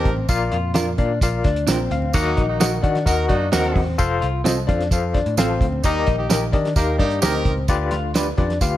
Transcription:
Already playing: clean electric guitar C4, horn section D#4 G4 A#4
0.05 picked electric bass A1, kick, closed hi-hat, muted conga, low conga
0.17 low conga
0.29 picked electric bass A#1, tine electric piano A#2 F4 A#4 D5 F5, kick, closed hi-hat, tambourine
0.51 picked electric bass F2, clean electric guitar F4, closed hi-hat, muted conga
0.74 picked electric bass F2, clean electric guitar D4 F4 A#4, tine electric piano F4 A#4 D5 F5, snare, closed hi-hat, tambourine
0.98 picked electric bass A#2, clean electric guitar D4, tine electric piano F4 A#4 D5 F5, kick, closed hi-hat, muted conga, high conga, low conga
1.21 picked electric bass A#1, tine electric piano F4 A#4 D5 F5, kick, closed hi-hat, tambourine, muted conga
1.44 picked electric bass D2, clean electric guitar D4, kick, snare, closed hi-hat, muted conga, high conga
1.56 closed hi-hat
1.67 picked electric bass A#1, clean electric guitar C4 D4 F4 A#4, tine electric piano G5, snare, closed hi-hat, tambourine, muted conga, high conga
1.91 picked electric bass D2, tine electric piano F5, closed hi-hat, muted conga, low conga
2.02 low conga
2.13 picked electric bass D#2, tine electric piano D#3 F#4 A#4 D#5 F#5, horn section F#3 A#3 D#4, kick, closed hi-hat, tambourine
2.37 picked electric bass A#1, clean electric guitar D#4, kick, closed hi-hat
2.49 horn section A#3 D#4 F#4
2.60 picked electric bass A#1, clean electric guitar D#4 F#4 A#4, tine electric piano F#4 A#4 D#5 F#5, snare, closed hi-hat, tambourine
2.83 picked electric bass D#3, clean electric guitar D4, tine electric piano F#4 A#4 D#5 F#5, kick, closed hi-hat, high conga, low conga
2.95 snare, closed hi-hat
3.06 picked electric bass D#2, horn section D#4 F#4 A#4, tine electric piano F#4 A#4 D#5 F#5, kick, closed hi-hat, tambourine, muted conga
3.28 picked electric bass F#2, horn section A#3 D#4 F#4, clean electric guitar D4, kick, closed hi-hat, muted conga, high conga
3.52 picked electric bass D#2, clean electric guitar C4 D#4 F#4 A#4, horn section D#4 F#4 A#4, tine electric piano F#4 A#4 D#5 F#5, snare, closed hi-hat, tambourine, muted conga, high conga
3.75 picked electric bass E2, kick, open hi-hat, muted conga, low conga
3.87 low conga
3.98 picked electric bass F1, tine electric piano F4 A4 C5 F5, kick, closed hi-hat, tambourine, muted conga
4.21 picked electric bass C2, clean electric guitar F4, closed hi-hat, muted conga
4.44 picked electric bass C2, clean electric guitar C4 F4 A4, tine electric piano F4 A4 C5 D#5, snare, closed hi-hat, tambourine
4.67 picked electric bass F2, clean electric guitar D4, tine electric piano F4 A4 C5 F5, kick, closed hi-hat, muted conga, high conga, low conga
4.81 snare, closed hi-hat
4.91 picked electric bass F2, tine electric piano F4 A4 C5 F5, kick, closed hi-hat, tambourine, muted conga
5.14 clean electric guitar D4, kick, snare, closed hi-hat, muted conga, high conga
5.26 picked electric bass A2, closed hi-hat
5.37 picked electric bass A1, clean electric guitar C4 F4 A4, tine electric piano F4 A4 C5 F5, snare, closed hi-hat, tambourine, high conga
5.61 picked electric bass D2, kick, closed hi-hat, low conga
5.72 low conga
5.83 picked electric bass D#2, tine electric piano D#3 D#4 G4 A#4 D#5, horn section G3 A#3 D#4, kick, closed hi-hat, tambourine, muted conga
6.07 picked electric bass A#1, clean electric guitar D#4, kick, closed hi-hat, muted conga
6.18 horn section A#3 D#4 G4
6.30 picked electric bass A#1, clean electric guitar D#4 G4 A#4, tine electric piano D#4 G4 A#4 D#5, snare, closed hi-hat, tambourine
6.52 picked electric bass D#3, clean electric guitar D4, tine electric piano D#4 G4 A#4 D#5, kick, closed hi-hat, muted conga, high conga, low conga
6.65 snare, closed hi-hat
6.76 picked electric bass D#2, tine electric piano D#4 G4 A#4 F5, horn section D#4 G4 A#4, kick, closed hi-hat, tambourine, muted conga
6.98 picked electric bass G2, horn section A#3 D#4 G4, clean electric guitar D4, kick, snare, closed hi-hat, high conga
7.11 closed hi-hat
7.22 picked electric bass D2, clean electric guitar C4 D#4 G4 A#4, horn section D#4 G4 A#4, tine electric piano D#4 G4 A#4 D#5, snare, closed hi-hat, tambourine, muted conga, high conga
7.45 picked electric bass C#2, kick, closed hi-hat, muted conga, low conga
7.58 low conga
7.68 picked electric bass D2, tine electric piano D3 F4 G4 B4 D5, kick, closed hi-hat, tambourine, muted conga
7.91 picked electric bass D2, clean electric guitar F4, snare, closed hi-hat
8.14 clean electric guitar D4 F4 B4, tine electric piano F4 G4 B4 D5, snare, closed hi-hat, tambourine
8.38 picked electric bass F2, clean electric guitar D4, tine electric piano F4 G4 B4 D5, kick, closed hi-hat, muted conga, high conga, low conga
8.50 snare, closed hi-hat
8.61 picked electric bass D2, tine electric piano F4 G4 B4 F5, kick, closed hi-hat, tambourine, muted conga

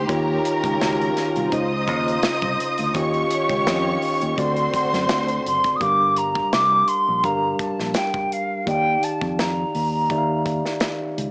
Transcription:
Already playing: tine electric piano G#3 D#4 G4 A#4 C5, string section G4
0.07 fingered electric bass D#2, tine electric piano D#3 D#4 F4 G4 C#5, string section D#3 C#4 F4, violin section A#4 A#5, kick, closed hi-hat
0.45 closed hi-hat
0.64 fingered electric bass C#2, kick, closed hi-hat
0.79 fingered electric bass C#2, tine electric piano D#3 D#4 F4 F#4 C#5, snare, closed hi-hat
0.87 tine electric piano G4
1.01 closed hi-hat
1.17 snare, closed hi-hat
1.36 fingered electric bass C2, closed hi-hat
1.51 fingered electric bass C#2, tine electric piano C#3 C#4 D#4 C5 D#5, string section C#3 D#4 C5, violin section D#5 D#6, kick, closed hi-hat
1.58 tine electric piano F4
1.88 fingered electric bass D#2, kick, closed hi-hat
2.08 closed hi-hat
2.23 muted fingered electric bass stroke, snare, closed hi-hat
2.42 fingered electric bass C2, kick, closed hi-hat
2.60 closed hi-hat
2.78 fingered electric bass D2, closed hi-hat
2.94 fingered electric bass D#2, tine electric piano D#3 C#4 F4 G4 D#5, string section D#3 C#4 F4 G4, violin section C#5 C#6, kick, closed hi-hat
3.14 closed hi-hat
3.30 closed hi-hat
3.49 fingered electric bass C#2, kick, closed hi-hat
3.65 fingered electric bass F2, tine electric piano D#3 C#4 F4 G4 D#5, snare, closed hi-hat
4.02 open hi-hat
4.22 fingered electric bass D#2, closed hi-hat
4.37 fingered electric bass D2, tine electric piano D3 C4 F#4 A4 D5, string section D3 A3 C4 F#4, violin section C5 C6, kick, closed hi-hat
4.56 closed hi-hat
4.74 muted fingered electric bass stroke, kick, closed hi-hat
4.93 fingered electric bass F#2, snare, closed hi-hat
5.09 fingered electric bass D2, snare, closed hi-hat
5.28 closed hi-hat
5.46 fingered electric bass F#1, flute C6, closed hi-hat
5.64 kick, closed hi-hat
5.76 tine electric piano G3, flute D#6
5.80 fingered electric bass G1, tine electric piano D4 G4 A#4 F5, flute D6, kick, closed hi-hat
6.17 flute A#5, closed hi-hat
6.35 kick
6.53 fingered electric bass C2, flute D6, snare, closed hi-hat
6.88 flute C6, closed hi-hat
7.08 fingered electric bass A#1
7.23 fingered electric bass G1, tine electric piano G3 D4 G4 A#4 F5, flute A#5, kick, closed hi-hat
7.59 flute A5, kick, closed hi-hat
7.80 fingered electric bass A#1, snare
7.94 flute G5, snare, closed hi-hat
8.14 kick
8.32 flute F5, closed hi-hat
8.66 fingered electric bass D#2, tine electric piano D#3 D#4 G4 D5 D#5, flute G5, kick, closed hi-hat
8.74 tine electric piano F5
9.03 flute A5, closed hi-hat
9.21 fingered electric bass F2, kick
9.34 flute A5
9.39 flute A#5, snare, closed hi-hat
9.75 fingered electric bass D#2, open hi-hat
10.10 tine electric piano D#3 D#4 G4 D5 E5, kick, closed hi-hat
10.18 tine electric piano F5
10.46 kick, closed hi-hat
10.65 snare
10.80 snare, closed hi-hat
11.18 fingered electric bass C#2, closed hi-hat

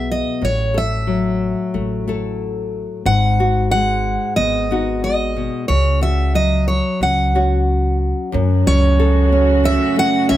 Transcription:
Already playing: upright bass B1, nylon-string guitar B2 F#3 B3 G#4, steel-string acoustic guitar E5
0.11 steel-string acoustic guitar D#5
0.42 upright bass A1, nylon-string guitar A2, steel-string acoustic guitar C#5
0.74 nylon-string guitar A4, steel-string acoustic guitar E5
1.07 nylon-string guitar F#3
1.74 upright bass A1, nylon-string guitar A3
2.08 nylon-string guitar A3 E4 A4
3.05 upright bass G#1, nylon-string guitar G#2, steel-string acoustic guitar F#5
3.40 nylon-string guitar F#4
3.71 nylon-string guitar G#3, steel-string acoustic guitar F#5
4.36 upright bass G#1, nylon-string guitar B3, steel-string acoustic guitar D#5
4.71 nylon-string guitar B3 D#4 F#4
5.04 steel-string acoustic guitar D#5
5.37 nylon-string guitar B2
5.68 upright bass C#2, nylon-string guitar C#3, steel-string acoustic guitar C#5
6.01 nylon-string guitar F#4, steel-string acoustic guitar E5
6.34 nylon-string guitar F#3, steel-string acoustic guitar D#5
6.68 steel-string acoustic guitar C#5
7.01 upright bass C#2, nylon-string guitar C#4, steel-string acoustic guitar F#5
7.35 nylon-string guitar C#4 F#4
8.32 nylon-string guitar F#2, upright bass F#2, string section C#3 A3 F#4, french horn C#4
8.67 upright bass C#2, nylon-string guitar C#4, steel-string acoustic guitar C#5
9.00 nylon-string guitar A4
9.32 nylon-string guitar C#4
9.64 nylon-string guitar C#3, steel-string acoustic guitar E5
9.96 nylon-string guitar A3, steel-string acoustic guitar F#5
10.29 upright bass C#2, nylon-string guitar C#4, steel-string acoustic guitar E5

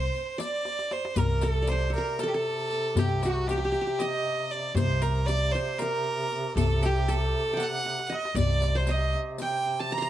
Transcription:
Already playing: violin C5, qanun C5, violin section C5
0.15 riq, darbuka ka
0.38 qanun D5, violin D5, riq, darbuka tek
0.65 riq, darbuka tek
0.79 darbuka ka
0.91 violin C5, riq, darbuka tek
1.05 darbuka ka
1.16 upright bass C2, duduk C3, qanun A#4, violin A#4, riq, darbuka dum
1.41 qanun A4, violin A4, riq, darbuka tek
1.62 qanun D5
1.67 violin C5, riq, darbuka tek
1.72 qanun C5
1.90 qanun A4, riq
1.95 violin A#4, qanun A#4
2.19 violin A4, riq, darbuka tek
2.23 qanun A4
2.28 violin G4
2.34 qanun A4, violin A4
2.46 darbuka ka
2.70 riq, darbuka ka
2.95 upright bass C2, qanun G4, riq, darbuka dum
2.99 violin G4
3.22 violin F#4, qanun F#4, riq, darbuka tek
3.47 violin G4, qanun G4, riq, darbuka tek
3.58 qanun G4
3.65 qanun G4
3.72 qanun G4, riq
3.81 qanun G4
3.87 qanun G4
3.99 violin D#5, qanun D#5, riq, darbuka tek
4.25 darbuka ka
4.50 violin D5, darbuka ka
4.74 upright bass C2, duduk C3, violin C5, qanun C5, riq, darbuka dum
5.02 violin A#4, riq, darbuka tek
5.27 violin D5, qanun D5, riq, darbuka tek
5.52 violin C5, qanun C5, riq
5.78 violin A#4, qanun A#4, riq, darbuka tek
6.06 darbuka ka
6.31 riq, darbuka ka
6.56 upright bass C2, violin A4, qanun A4, riq, darbuka dum
6.83 violin G4, qanun G4, riq, darbuka tek
7.08 qanun A4, violin A4, riq, darbuka tek
7.35 darbuka ka
7.53 qanun F#5 G5
7.60 violin F#5, riq, darbuka tek
7.85 riq, darbuka tek
7.99 darbuka ka
8.07 qanun D#5, violin F#5
8.11 violin D#5, riq, darbuka tek
8.25 darbuka ka
8.34 upright bass C2, duduk C3, qanun D5, riq, darbuka dum
8.39 violin D5
8.62 riq, darbuka tek
8.75 qanun C5, violin C5
8.87 qanun D#5, riq, darbuka tek
8.91 violin D#5
9.13 riq
9.38 qanun G5, violin G5, riq, darbuka tek
9.66 darbuka ka
9.80 violin A5, qanun A5
9.91 qanun A#5, violin A#5, riq, darbuka ka
9.98 qanun C6
10.02 qanun A#5

